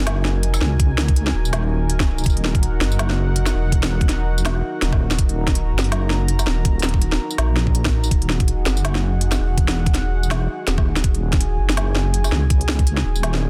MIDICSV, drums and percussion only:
0, 0, Header, 1, 2, 480
1, 0, Start_track
1, 0, Tempo, 365854
1, 1044, Time_signature, 4, 2, 24, 8
1, 17709, End_track
2, 0, Start_track
2, 0, Title_t, "Drums"
2, 88, Note_on_c, 9, 38, 126
2, 88, Note_on_c, 9, 42, 81
2, 219, Note_off_c, 9, 38, 0
2, 219, Note_off_c, 9, 42, 0
2, 326, Note_on_c, 9, 40, 51
2, 457, Note_off_c, 9, 40, 0
2, 566, Note_on_c, 9, 42, 69
2, 697, Note_off_c, 9, 42, 0
2, 705, Note_on_c, 9, 38, 40
2, 705, Note_on_c, 9, 54, 64
2, 805, Note_on_c, 9, 40, 54
2, 836, Note_off_c, 9, 38, 0
2, 836, Note_off_c, 9, 54, 0
2, 937, Note_off_c, 9, 40, 0
2, 1044, Note_on_c, 9, 36, 119
2, 1045, Note_on_c, 9, 42, 75
2, 1175, Note_off_c, 9, 36, 0
2, 1176, Note_off_c, 9, 42, 0
2, 1286, Note_on_c, 9, 40, 83
2, 1417, Note_off_c, 9, 40, 0
2, 1422, Note_on_c, 9, 36, 111
2, 1422, Note_on_c, 9, 42, 38
2, 1526, Note_off_c, 9, 42, 0
2, 1526, Note_on_c, 9, 42, 67
2, 1554, Note_off_c, 9, 36, 0
2, 1657, Note_off_c, 9, 42, 0
2, 1663, Note_on_c, 9, 40, 54
2, 1794, Note_off_c, 9, 40, 0
2, 1905, Note_on_c, 9, 54, 37
2, 2006, Note_on_c, 9, 38, 120
2, 2006, Note_on_c, 9, 42, 77
2, 2036, Note_off_c, 9, 54, 0
2, 2137, Note_off_c, 9, 38, 0
2, 2137, Note_off_c, 9, 42, 0
2, 2487, Note_on_c, 9, 42, 65
2, 2619, Note_off_c, 9, 42, 0
2, 2623, Note_on_c, 9, 36, 113
2, 2625, Note_on_c, 9, 38, 39
2, 2625, Note_on_c, 9, 40, 78
2, 2754, Note_off_c, 9, 36, 0
2, 2757, Note_off_c, 9, 38, 0
2, 2757, Note_off_c, 9, 40, 0
2, 2865, Note_on_c, 9, 54, 33
2, 2933, Note_off_c, 9, 54, 0
2, 2933, Note_on_c, 9, 54, 28
2, 2965, Note_on_c, 9, 36, 119
2, 2968, Note_on_c, 9, 42, 75
2, 3014, Note_off_c, 9, 54, 0
2, 3014, Note_on_c, 9, 54, 23
2, 3096, Note_off_c, 9, 36, 0
2, 3099, Note_off_c, 9, 42, 0
2, 3107, Note_on_c, 9, 42, 36
2, 3145, Note_off_c, 9, 54, 0
2, 3209, Note_on_c, 9, 40, 53
2, 3238, Note_off_c, 9, 42, 0
2, 3341, Note_off_c, 9, 40, 0
2, 3343, Note_on_c, 9, 36, 109
2, 3346, Note_on_c, 9, 42, 36
2, 3449, Note_off_c, 9, 42, 0
2, 3449, Note_on_c, 9, 42, 64
2, 3474, Note_off_c, 9, 36, 0
2, 3580, Note_off_c, 9, 42, 0
2, 3688, Note_on_c, 9, 40, 77
2, 3819, Note_off_c, 9, 40, 0
2, 3827, Note_on_c, 9, 54, 38
2, 3927, Note_on_c, 9, 38, 120
2, 3927, Note_on_c, 9, 42, 77
2, 3958, Note_off_c, 9, 54, 0
2, 4058, Note_off_c, 9, 38, 0
2, 4058, Note_off_c, 9, 42, 0
2, 4065, Note_on_c, 9, 40, 48
2, 4196, Note_off_c, 9, 40, 0
2, 4406, Note_on_c, 9, 42, 64
2, 4538, Note_off_c, 9, 42, 0
2, 4544, Note_on_c, 9, 38, 39
2, 4544, Note_on_c, 9, 40, 52
2, 4544, Note_on_c, 9, 54, 68
2, 4675, Note_off_c, 9, 38, 0
2, 4675, Note_off_c, 9, 40, 0
2, 4675, Note_off_c, 9, 54, 0
2, 4883, Note_on_c, 9, 36, 113
2, 4886, Note_on_c, 9, 42, 73
2, 5015, Note_off_c, 9, 36, 0
2, 5017, Note_off_c, 9, 42, 0
2, 5025, Note_on_c, 9, 40, 81
2, 5025, Note_on_c, 9, 42, 37
2, 5156, Note_off_c, 9, 40, 0
2, 5156, Note_off_c, 9, 42, 0
2, 5261, Note_on_c, 9, 36, 101
2, 5265, Note_on_c, 9, 42, 36
2, 5366, Note_off_c, 9, 42, 0
2, 5366, Note_on_c, 9, 40, 55
2, 5366, Note_on_c, 9, 42, 67
2, 5392, Note_off_c, 9, 36, 0
2, 5497, Note_off_c, 9, 40, 0
2, 5497, Note_off_c, 9, 42, 0
2, 5744, Note_on_c, 9, 54, 38
2, 5846, Note_on_c, 9, 38, 114
2, 5846, Note_on_c, 9, 40, 52
2, 5846, Note_on_c, 9, 42, 76
2, 5876, Note_off_c, 9, 54, 0
2, 5977, Note_off_c, 9, 38, 0
2, 5977, Note_off_c, 9, 40, 0
2, 5977, Note_off_c, 9, 42, 0
2, 6325, Note_on_c, 9, 40, 79
2, 6325, Note_on_c, 9, 42, 65
2, 6456, Note_off_c, 9, 40, 0
2, 6456, Note_off_c, 9, 42, 0
2, 6462, Note_on_c, 9, 36, 102
2, 6463, Note_on_c, 9, 38, 35
2, 6593, Note_off_c, 9, 36, 0
2, 6594, Note_off_c, 9, 38, 0
2, 6702, Note_on_c, 9, 40, 51
2, 6702, Note_on_c, 9, 54, 38
2, 6804, Note_on_c, 9, 36, 109
2, 6804, Note_on_c, 9, 42, 78
2, 6833, Note_off_c, 9, 40, 0
2, 6833, Note_off_c, 9, 54, 0
2, 6935, Note_off_c, 9, 36, 0
2, 6935, Note_off_c, 9, 42, 0
2, 6943, Note_on_c, 9, 42, 35
2, 7074, Note_off_c, 9, 42, 0
2, 7182, Note_on_c, 9, 36, 102
2, 7183, Note_on_c, 9, 40, 56
2, 7183, Note_on_c, 9, 42, 35
2, 7285, Note_off_c, 9, 42, 0
2, 7285, Note_on_c, 9, 42, 67
2, 7313, Note_off_c, 9, 36, 0
2, 7314, Note_off_c, 9, 40, 0
2, 7416, Note_off_c, 9, 42, 0
2, 7593, Note_on_c, 9, 40, 86
2, 7663, Note_on_c, 9, 54, 40
2, 7724, Note_off_c, 9, 40, 0
2, 7766, Note_on_c, 9, 38, 113
2, 7766, Note_on_c, 9, 42, 77
2, 7794, Note_off_c, 9, 54, 0
2, 7897, Note_off_c, 9, 38, 0
2, 7897, Note_off_c, 9, 42, 0
2, 8005, Note_on_c, 9, 40, 57
2, 8136, Note_off_c, 9, 40, 0
2, 8245, Note_on_c, 9, 42, 70
2, 8376, Note_off_c, 9, 42, 0
2, 8384, Note_on_c, 9, 38, 37
2, 8384, Note_on_c, 9, 54, 72
2, 8486, Note_on_c, 9, 40, 59
2, 8516, Note_off_c, 9, 38, 0
2, 8516, Note_off_c, 9, 54, 0
2, 8618, Note_off_c, 9, 40, 0
2, 8724, Note_on_c, 9, 36, 112
2, 8725, Note_on_c, 9, 42, 80
2, 8856, Note_off_c, 9, 36, 0
2, 8856, Note_off_c, 9, 42, 0
2, 8914, Note_on_c, 9, 42, 38
2, 8964, Note_on_c, 9, 40, 88
2, 9034, Note_off_c, 9, 42, 0
2, 9034, Note_on_c, 9, 42, 40
2, 9096, Note_off_c, 9, 40, 0
2, 9102, Note_on_c, 9, 36, 102
2, 9166, Note_off_c, 9, 42, 0
2, 9205, Note_on_c, 9, 42, 69
2, 9233, Note_off_c, 9, 36, 0
2, 9336, Note_off_c, 9, 42, 0
2, 9345, Note_on_c, 9, 40, 58
2, 9476, Note_off_c, 9, 40, 0
2, 9585, Note_on_c, 9, 54, 39
2, 9687, Note_on_c, 9, 38, 111
2, 9687, Note_on_c, 9, 42, 81
2, 9716, Note_off_c, 9, 54, 0
2, 9818, Note_off_c, 9, 38, 0
2, 9818, Note_off_c, 9, 42, 0
2, 9925, Note_on_c, 9, 40, 57
2, 10056, Note_off_c, 9, 40, 0
2, 10061, Note_on_c, 9, 36, 58
2, 10165, Note_on_c, 9, 42, 69
2, 10193, Note_off_c, 9, 36, 0
2, 10296, Note_off_c, 9, 42, 0
2, 10302, Note_on_c, 9, 36, 106
2, 10302, Note_on_c, 9, 38, 36
2, 10302, Note_on_c, 9, 40, 85
2, 10302, Note_on_c, 9, 42, 37
2, 10433, Note_off_c, 9, 36, 0
2, 10434, Note_off_c, 9, 38, 0
2, 10434, Note_off_c, 9, 40, 0
2, 10434, Note_off_c, 9, 42, 0
2, 10542, Note_on_c, 9, 54, 37
2, 10643, Note_on_c, 9, 36, 119
2, 10645, Note_on_c, 9, 42, 81
2, 10674, Note_off_c, 9, 54, 0
2, 10775, Note_off_c, 9, 36, 0
2, 10776, Note_off_c, 9, 42, 0
2, 10782, Note_on_c, 9, 42, 39
2, 10884, Note_on_c, 9, 40, 56
2, 10913, Note_off_c, 9, 42, 0
2, 11015, Note_off_c, 9, 40, 0
2, 11022, Note_on_c, 9, 36, 109
2, 11022, Note_on_c, 9, 42, 39
2, 11125, Note_off_c, 9, 42, 0
2, 11125, Note_on_c, 9, 42, 69
2, 11153, Note_off_c, 9, 36, 0
2, 11256, Note_off_c, 9, 42, 0
2, 11364, Note_on_c, 9, 40, 86
2, 11496, Note_off_c, 9, 40, 0
2, 11504, Note_on_c, 9, 54, 38
2, 11607, Note_on_c, 9, 38, 122
2, 11607, Note_on_c, 9, 42, 86
2, 11635, Note_off_c, 9, 54, 0
2, 11738, Note_off_c, 9, 38, 0
2, 11738, Note_off_c, 9, 42, 0
2, 11744, Note_on_c, 9, 40, 55
2, 11875, Note_off_c, 9, 40, 0
2, 12085, Note_on_c, 9, 42, 71
2, 12216, Note_off_c, 9, 42, 0
2, 12223, Note_on_c, 9, 38, 39
2, 12223, Note_on_c, 9, 40, 59
2, 12223, Note_on_c, 9, 54, 67
2, 12355, Note_off_c, 9, 38, 0
2, 12355, Note_off_c, 9, 40, 0
2, 12355, Note_off_c, 9, 54, 0
2, 12563, Note_on_c, 9, 36, 123
2, 12564, Note_on_c, 9, 42, 85
2, 12694, Note_off_c, 9, 36, 0
2, 12695, Note_off_c, 9, 42, 0
2, 12703, Note_on_c, 9, 40, 79
2, 12703, Note_on_c, 9, 42, 39
2, 12834, Note_off_c, 9, 40, 0
2, 12834, Note_off_c, 9, 42, 0
2, 12941, Note_on_c, 9, 36, 112
2, 12943, Note_on_c, 9, 42, 38
2, 13046, Note_off_c, 9, 42, 0
2, 13046, Note_on_c, 9, 40, 54
2, 13046, Note_on_c, 9, 42, 73
2, 13072, Note_off_c, 9, 36, 0
2, 13177, Note_off_c, 9, 40, 0
2, 13177, Note_off_c, 9, 42, 0
2, 13425, Note_on_c, 9, 54, 38
2, 13526, Note_on_c, 9, 38, 120
2, 13526, Note_on_c, 9, 40, 53
2, 13526, Note_on_c, 9, 42, 83
2, 13557, Note_off_c, 9, 54, 0
2, 13658, Note_off_c, 9, 38, 0
2, 13658, Note_off_c, 9, 40, 0
2, 13658, Note_off_c, 9, 42, 0
2, 14005, Note_on_c, 9, 40, 87
2, 14005, Note_on_c, 9, 42, 73
2, 14136, Note_off_c, 9, 40, 0
2, 14136, Note_off_c, 9, 42, 0
2, 14141, Note_on_c, 9, 36, 114
2, 14143, Note_on_c, 9, 38, 39
2, 14273, Note_off_c, 9, 36, 0
2, 14274, Note_off_c, 9, 38, 0
2, 14383, Note_on_c, 9, 40, 53
2, 14383, Note_on_c, 9, 54, 34
2, 14484, Note_on_c, 9, 36, 125
2, 14484, Note_on_c, 9, 42, 81
2, 14515, Note_off_c, 9, 40, 0
2, 14515, Note_off_c, 9, 54, 0
2, 14615, Note_off_c, 9, 36, 0
2, 14615, Note_off_c, 9, 42, 0
2, 14622, Note_on_c, 9, 42, 37
2, 14754, Note_off_c, 9, 42, 0
2, 14861, Note_on_c, 9, 40, 53
2, 14861, Note_on_c, 9, 42, 38
2, 14862, Note_on_c, 9, 36, 115
2, 14964, Note_off_c, 9, 42, 0
2, 14964, Note_on_c, 9, 42, 72
2, 14992, Note_off_c, 9, 40, 0
2, 14993, Note_off_c, 9, 36, 0
2, 15095, Note_off_c, 9, 42, 0
2, 15344, Note_on_c, 9, 40, 79
2, 15344, Note_on_c, 9, 54, 35
2, 15445, Note_on_c, 9, 38, 123
2, 15445, Note_on_c, 9, 42, 81
2, 15475, Note_off_c, 9, 40, 0
2, 15475, Note_off_c, 9, 54, 0
2, 15576, Note_off_c, 9, 38, 0
2, 15576, Note_off_c, 9, 42, 0
2, 15684, Note_on_c, 9, 40, 54
2, 15816, Note_off_c, 9, 40, 0
2, 15925, Note_on_c, 9, 42, 71
2, 16056, Note_off_c, 9, 42, 0
2, 16063, Note_on_c, 9, 38, 41
2, 16063, Note_on_c, 9, 54, 65
2, 16165, Note_on_c, 9, 40, 54
2, 16194, Note_off_c, 9, 38, 0
2, 16194, Note_off_c, 9, 54, 0
2, 16296, Note_off_c, 9, 40, 0
2, 16403, Note_on_c, 9, 36, 126
2, 16403, Note_on_c, 9, 42, 78
2, 16534, Note_off_c, 9, 36, 0
2, 16534, Note_off_c, 9, 42, 0
2, 16542, Note_on_c, 9, 42, 39
2, 16644, Note_on_c, 9, 40, 80
2, 16673, Note_off_c, 9, 42, 0
2, 16775, Note_off_c, 9, 40, 0
2, 16781, Note_on_c, 9, 36, 106
2, 16782, Note_on_c, 9, 42, 37
2, 16883, Note_off_c, 9, 42, 0
2, 16883, Note_on_c, 9, 42, 66
2, 16912, Note_off_c, 9, 36, 0
2, 17014, Note_off_c, 9, 42, 0
2, 17021, Note_on_c, 9, 40, 52
2, 17152, Note_off_c, 9, 40, 0
2, 17260, Note_on_c, 9, 54, 36
2, 17362, Note_on_c, 9, 38, 124
2, 17362, Note_on_c, 9, 42, 78
2, 17391, Note_off_c, 9, 54, 0
2, 17493, Note_off_c, 9, 38, 0
2, 17493, Note_off_c, 9, 42, 0
2, 17501, Note_on_c, 9, 40, 52
2, 17632, Note_off_c, 9, 40, 0
2, 17709, End_track
0, 0, End_of_file